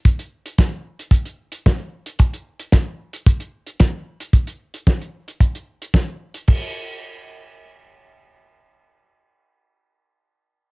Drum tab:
CC |----------------|----------------|----------------|x---------------|
HH |xx-xx--xxx-xx--x|xx-xx--xxx-xx--x|xx-xxx-xxx-xx--x|----------------|
SD |----o-------o---|----o-------o---|----o-------o---|----------------|
BD |o---o---o---o---|o---o---o---o---|o---o---o---o---|o---------------|

CC |----------------|
HH |----------------|
SD |----------------|
BD |----------------|